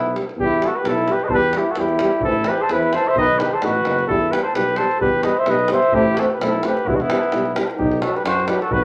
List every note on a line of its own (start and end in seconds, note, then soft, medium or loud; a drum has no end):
0.00 0.17 B1 medium
0.00 0.16 B3 medium
0.00 0.14 E4 loud
0.14 0.24 G3 medium
0.14 0.24 B3 soft
0.14 davul high medium
0.29 davul high soft
0.37 0.62 E2 medium
0.37 0.49 G3 medium
0.37 0.47 B3 soft
0.37 0.67 G4 loud
0.37 davul low medium
0.44 0.68 E4 medium
0.61 0.70 G3 medium
0.61 0.71 B3 medium
0.61 davul high medium
0.66 0.82 F#4 medium
0.66 0.77 A4 medium
0.76 0.89 B4 medium
0.80 1.09 B1 medium
0.80 0.93 G3 medium
0.80 0.92 G4 medium
0.85 0.94 B3 medium
0.85 1.14 A4 medium
0.85 davul high medium
0.91 1.13 E4 medium
0.98 davul high soft
1.07 1.17 G3 medium
1.07 1.17 B3 medium
1.07 davul high soft
1.12 1.26 G4 medium
1.12 1.25 B4 medium
1.20 1.25 D#5 medium
1.20 davul high soft
1.25 1.27 B4 medium
1.25 1.31 C5 medium
1.25 davul low medium
1.30 1.55 E2 medium
1.30 1.40 G3 medium
1.30 1.40 B3 medium
1.30 1.33 A4 medium
1.34 1.59 G4 medium
1.34 1.59 B4 loud
1.53 1.63 G3 medium
1.53 1.63 B3 medium
1.53 davul high medium
1.57 1.72 E4 medium
1.57 1.73 G4 medium
1.70 1.81 F#4 medium
1.70 1.81 A4 medium
1.75 2.02 E2 medium
1.75 1.86 G3 medium
1.75 1.87 B3 medium
1.75 2.24 E4 medium
1.75 2.23 G4 medium
1.75 davul high medium
1.88 davul high soft
1.99 2.10 G3 medium
1.99 2.10 B3 medium
1.99 davul high medium
2.11 davul high soft
2.21 2.49 A1 medium
2.21 2.32 C4 medium
2.21 2.49 A4 loud
2.21 davul low medium
2.25 2.34 E3 medium
2.25 2.51 E4 medium
2.44 2.57 E3 medium
2.44 2.56 C4 medium
2.44 2.63 B4 medium
2.44 davul high medium
2.50 2.64 G4 medium
2.61 2.73 A4 medium
2.61 2.73 C5 medium
2.69 2.95 E2 medium
2.69 2.80 E3 medium
2.69 2.79 C4 medium
2.69 2.97 E4 medium
2.69 2.95 B4 medium
2.69 davul high medium
2.83 davul high soft
2.93 3.03 E3 medium
2.93 3.02 C4 medium
2.93 3.11 A4 medium
2.93 3.09 C5 medium
2.93 davul high medium
3.05 3.17 E5 medium
3.05 davul high soft
3.09 3.17 C5 medium
3.15 3.41 B1 medium
3.15 3.26 D#3 medium
3.15 3.25 B3 medium
3.15 3.40 D#5 loud
3.15 davul low medium
3.20 3.43 B4 medium
3.38 3.48 D#3 medium
3.38 3.48 B3 soft
3.38 3.55 G4 medium
3.38 3.54 B4 medium
3.38 davul high medium
3.51 3.66 A4 medium
3.51 3.65 C5 medium
3.51 davul high soft
3.61 3.82 A1 medium
3.61 3.71 D#3 soft
3.61 3.72 B3 soft
3.61 4.09 F#4 medium
3.61 4.07 B4 medium
3.61 davul high medium
3.75 davul high soft
3.83 4.05 F#1 medium
3.83 3.94 D#3 soft
3.83 3.95 B3 soft
3.83 davul high medium
3.99 davul high soft
4.07 4.33 E2 medium
4.07 4.18 G3 medium
4.07 4.18 B3 medium
4.07 4.33 E4 medium
4.07 4.33 A4 loud
4.07 davul low medium
4.31 4.41 G3 medium
4.31 4.42 B3 medium
4.31 4.44 G4 medium
4.31 4.42 B4 medium
4.31 davul high medium
4.43 4.56 A4 medium
4.43 4.56 C5 medium
4.54 4.80 B1 medium
4.54 4.64 G3 medium
4.54 4.63 B3 medium
4.54 4.79 G4 medium
4.54 4.79 B4 medium
4.54 davul high medium
4.68 davul high soft
4.76 4.87 G3 medium
4.76 4.88 B3 soft
4.76 5.00 A4 medium
4.76 5.00 C5 medium
4.76 davul high medium
4.91 davul high soft
5.00 5.26 E2 medium
5.00 5.10 G3 medium
5.00 5.11 B3 medium
5.00 5.27 G4 medium
5.00 5.25 B4 loud
5.00 davul low medium
5.23 5.33 G3 medium
5.23 5.33 B3 medium
5.23 5.39 B4 medium
5.23 5.41 D#5 medium
5.23 davul high medium
5.38 5.50 C5 medium
5.38 5.51 E5 medium
5.46 5.72 B1 medium
5.46 5.56 G3 medium
5.46 5.56 B3 medium
5.46 5.71 B4 medium
5.46 5.72 D#5 medium
5.46 davul high medium
5.59 davul high soft
5.68 5.79 G3 medium
5.68 5.80 B3 medium
5.68 5.97 C5 medium
5.68 davul high medium
5.73 5.96 E5 medium
5.83 davul high soft
5.92 6.19 A1 medium
5.92 6.03 A3 medium
5.92 6.03 C4 medium
5.92 6.16 E4 medium
5.92 6.18 G4 loud
5.92 davul low medium
6.15 6.26 A3 medium
6.15 6.27 C4 medium
6.15 6.32 F#4 medium
6.15 6.20 G4 medium
6.15 6.21 B4 medium
6.15 davul high medium
6.19 6.35 A4 medium
6.31 6.41 G4 medium
6.31 6.40 B4 medium
6.39 6.65 B1 medium
6.39 6.51 A3 medium
6.39 6.50 C4 medium
6.39 6.67 E4 medium
6.39 6.67 A4 medium
6.39 davul high medium
6.53 davul high soft
6.63 6.74 A3 medium
6.63 6.74 C4 medium
6.63 6.89 G4 medium
6.63 6.89 B4 medium
6.63 davul high medium
6.77 davul high soft
6.84 7.10 E1 medium
6.84 6.96 B3 medium
6.84 6.97 B3 medium
6.84 6.97 E4 medium
6.84 davul low medium
6.89 6.98 G3 medium
6.95 7.03 D#4 soft
6.95 7.03 F#4 medium
7.00 7.56 B3 medium
7.00 7.56 E4 medium
7.00 davul high soft
7.09 7.20 G3 medium
7.09 7.19 B3 medium
7.09 davul high medium
7.23 davul high soft
7.32 7.58 B1 medium
7.32 7.43 G3 medium
7.32 7.43 B3 soft
7.32 davul high medium
7.46 davul high soft
7.56 7.66 G3 medium
7.56 7.65 B3 soft
7.56 davul high medium
7.70 davul high soft
7.77 8.04 B1 medium
7.77 8.03 D#4 medium
7.77 8.03 G4 medium
7.77 davul low medium
7.91 davul high soft
8.02 8.13 F#3 medium
8.02 8.11 D#4 soft
8.02 8.18 F#4 medium
8.02 8.17 A4 medium
8.02 davul high medium
8.16 8.25 G4 medium
8.16 8.25 B4 medium
8.16 davul high soft
8.25 8.50 F#2 medium
8.25 8.48 F#4 medium
8.25 8.50 C5 medium
8.25 davul high medium
8.40 davul high soft
8.47 8.59 F#3 medium
8.47 8.57 D#4 medium
8.47 8.60 G4 medium
8.47 8.61 B4 medium
8.47 davul high medium
8.62 8.72 F#4 medium
8.62 8.74 A4 medium
8.62 davul high soft
8.71 8.84 B1 medium
8.71 8.84 F#4 medium
8.71 8.84 B4 loud
8.71 davul low loud